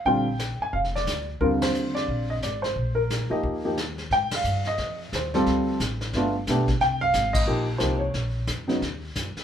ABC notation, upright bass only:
X:1
M:4/4
L:1/8
Q:"Swing" 1/4=178
K:Eb
V:1 name="Upright bass" clef=bass
B,,,3 z F,,,2 D,,2 | E,,4 B,,,2 A,,,2 | B,,,3 z E,,4 | [K:Cphr] A,, z G,,2 F,,2 E,,2 |
=D,,2 =A,,,2 G,,,2 =B,,,2 | C,,2 A,,,2 B,,,2 C,,2 | B,,,2 F,,2 E,,2 _G,, z |]